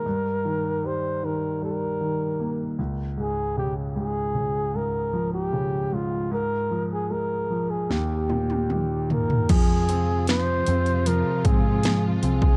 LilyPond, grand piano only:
\new Staff \with { instrumentName = "Grand piano" } { \clef bass \time 4/4 \key f \minor \tempo 4 = 77 g,8 ees8 g8 ees8 g8 ees8 bes8 des,8 | aes,8 des8 aes,8 des8 aes,8 f8 des8 aes,8 | aes,8 f8 aes8 f8 ees,8 bes,8 ees8 bes,8 | f8 c'8 f8 c'8 f8 c'8 f8 c'8 | }